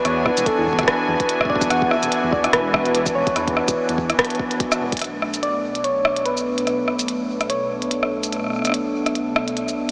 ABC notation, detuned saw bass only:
X:1
M:4/4
L:1/16
Q:"Swing 16ths" 1/4=145
K:Bdor
V:1 name="Detuned saw bass" clef=bass
E,,2 z E,,, z E,,2 z3 E,, z4 E,,, | E,,2 z E,,, z E,,2 z E,,,4- E,,, z E,,, z | E,,2 z E,,, z E,,2 z6 z E,,, z | B,,,16- |
B,,,16- | B,,,16 |]